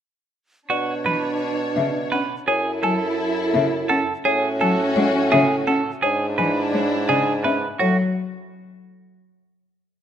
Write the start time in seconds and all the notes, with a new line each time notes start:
0.70 B2 D4 F#4 C#5 D5
1.05 E3 B4 B5
1.76 C#3 E5
2.12 C#4 B4 F#5
2.47 F#2 E4 G#4 A4 C#5
2.83 F#3 A4 G#5
3.54 C#3 E5
3.89 C#4 A4 F#5
4.24 A2 C#4 F#4 G#4 C#5
4.61 F#3 A4 G#5
4.96 G#3 C#5
5.31 C#3 G#4 E5
5.67 C#4 A4 F#5
6.02 G#2 D4 E4 G#4 C#5
6.38 E3 B4 G#5
6.73 G#3 C#5
7.09 C#3 G#4 D5
7.44 C#4 B4 E5
7.79 A2 F#3 F#4 C#5